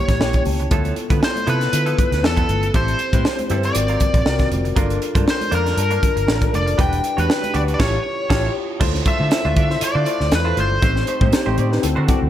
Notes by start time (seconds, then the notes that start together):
Already playing: A#3 C#4 E4 G4 C#5
0.08 A1, muted clean electric guitar stroke, kick, snare, closed hi-hat
0.20 A#1 A#3 C#4 E4 G4 G5, muted clean electric guitar stroke, snare, muted conga
0.33 muted clean electric guitar stroke, kick, closed hi-hat
0.45 C#2 A5, open hi-hat, high conga, low conga
0.59 muted clean electric guitar stroke, closed hi-hat, low conga
0.71 D2 F3 B3 E4 F4 A4, kick, closed hi-hat
0.84 closed hi-hat, muted conga
0.96 muted clean electric guitar stroke, closed hi-hat
1.09 D3 F3 B3 E4 F4 A4 B4, kick, closed hi-hat, high conga
1.22 C5, muted clean electric guitar stroke, snare
1.35 muted clean electric guitar stroke, closed hi-hat, muted conga, high conga
1.46 C3 F3 B3 E4 F4 A4 B4, closed hi-hat, low conga
1.60 B3 E4 A4, snare, closed hi-hat
1.72 D3 B3 E4 F4 A4, closed hi-hat, muted conga
1.86 F3 B3 E4 A4, closed hi-hat, muted conga
1.99 kick, closed hi-hat
2.11 D2, muted clean electric guitar stroke, snare, closed hi-hat
2.23 E2 B3 E4 F4 A4, muted clean electric guitar stroke, snare, muted conga
2.37 F3 B3 E4 A4, kick, closed hi-hat, muted conga
2.49 G1, muted clean electric guitar stroke, closed hi-hat, high conga, low conga
2.63 muted clean electric guitar stroke, closed hi-hat, low conga
2.73 A1 G3 C4 E4 G4 A4 C5, kick, closed hi-hat
2.88 closed hi-hat, muted conga
2.99 muted clean electric guitar stroke, closed hi-hat
3.13 A2 G3 C4 E4 G4 B4 C5, kick, closed hi-hat, high conga
3.25 snare, muted conga
3.39 muted clean electric guitar stroke, closed hi-hat, muted conga, high conga
3.49 G2 G3 C4 E4 G4 A4 B4, closed hi-hat, low conga
3.63 G3 C4 E4 A4 D5, closed hi-hat
3.75 G#1 C4 F4 F#4 A#4, muted clean electric guitar stroke, closed hi-hat, muted conga
3.88 F#3 C4 F4 A#4, closed hi-hat
4.00 muted clean electric guitar stroke, kick, closed hi-hat
4.14 A#1, muted clean electric guitar stroke, kick, closed hi-hat
4.25 C2 C4 F4 F#4 A#4, muted clean electric guitar stroke, snare
4.39 muted clean electric guitar stroke, kick, snare, closed hi-hat, muted conga
4.51 F1, closed hi-hat, high conga, low conga
4.65 muted clean electric guitar stroke, closed hi-hat, low conga
4.76 G1 A#3 D4 F4 A4 A#4, kick, closed hi-hat, muted conga
4.90 closed hi-hat
5.01 muted clean electric guitar stroke, closed hi-hat
5.15 G2 A#3 D4 F4 A4 A#4 C5, kick, closed hi-hat, high conga
5.26 C5, muted clean electric guitar stroke, snare, muted conga
5.40 muted clean electric guitar stroke, closed hi-hat, muted conga, high conga
5.51 F2 A#3 D4 F4 A4 A#4, closed hi-hat, low conga
5.65 A#3 D4 F4 A#4, snare, closed hi-hat
5.77 G2 D4 F4 A#4 A5, muted clean electric guitar stroke, closed hi-hat
5.90 A#3 D4 F4 A#4, closed hi-hat, muted conga
6.02 muted clean electric guitar stroke, kick, closed hi-hat
6.16 G1, muted clean electric guitar stroke, closed hi-hat
6.27 A1 D4 F4 A4 A#4, muted clean electric guitar stroke, snare
6.41 muted clean electric guitar stroke, kick, closed hi-hat, muted conga
6.53 F1 D5, closed hi-hat, high conga, low conga
6.66 muted clean electric guitar stroke, closed hi-hat, low conga
6.78 E1 G3 D4 E4 F#4 G4 B4 G5, kick, closed hi-hat
6.93 closed hi-hat
7.04 muted clean electric guitar stroke, closed hi-hat
7.17 E2 G3 D4 F#4 G4 B4 C#5, closed hi-hat, high conga
7.29 muted clean electric guitar stroke, snare
7.42 muted clean electric guitar stroke, closed hi-hat, muted conga, high conga
7.54 D2 G3 D4 F#4 G4 B4 D5, closed hi-hat, low conga
7.67 G3 D4 F#4 B4, closed hi-hat
7.74 D5
7.79 A1 G3 C#4 E4 F4 G4 A4 C#5, kick, snare, crash
8.30 A1 G3 C#4 E4 F4 G4 A4 C#5, kick, snare, crash
8.80 D2 A3 D4 E4 F4 A4 C5, kick, crash, muted conga
8.94 muted clean electric guitar stroke, snare, muted conga
9.05 A3 D4 F4 C5 E5, kick, closed hi-hat
9.19 D3 A3 D4 F4 C5, high conga
9.31 E4 F4 A4 C5, muted clean electric guitar stroke, snare, closed hi-hat, muted conga
9.45 D2 A3 D4 F4 C5, muted conga, high conga
9.56 D3 A3 D4 F4 D5, kick, closed hi-hat, low conga
9.69 E4 F4 A4 C5, muted clean electric guitar stroke, snare
9.81 D5, muted clean electric guitar stroke, muted fingered electric bass stroke, closed hi-hat
9.95 D3 A3 D4 F4 C5, muted conga
10.06 A3 D4 E4 F4 A4 C5 D5, closed hi-hat
10.20 D2, muted clean electric guitar stroke, snare
10.32 E2 B4, muted clean electric guitar stroke, snare, closed hi-hat, high conga
10.45 A3 D4 E4 F4 A4 C5
10.57 G1 A3 D4 F4 C5, closed hi-hat, high conga, low conga
10.70 muted clean electric guitar stroke, low conga
10.82 A1 A3 C4 D#4 G4 C5, kick, closed hi-hat
10.95 muted clean electric guitar stroke, snare, muted conga
11.07 A3 D#4 G4 C5, closed hi-hat
11.21 A2 A3 D#4 G4 C5, kick, high conga
11.32 C4 D#4 G4 C5, muted clean electric guitar stroke, snare, closed hi-hat
11.46 A1 A3 D#4 G4 C5, muted conga, high conga
11.58 A2 A3 D#4 G4 D5, closed hi-hat, low conga
11.71 C4 D#4 G4 B4, muted clean electric guitar stroke, snare
11.82 D2 C4 E4 F#4 A4, muted clean electric guitar stroke, closed hi-hat
11.96 D3 A3 D4 F#4 C5, muted conga
12.08 A3 C4 D4 E4 F#4 A4 D5 F#5, kick, closed hi-hat
12.21 D2, muted clean electric guitar stroke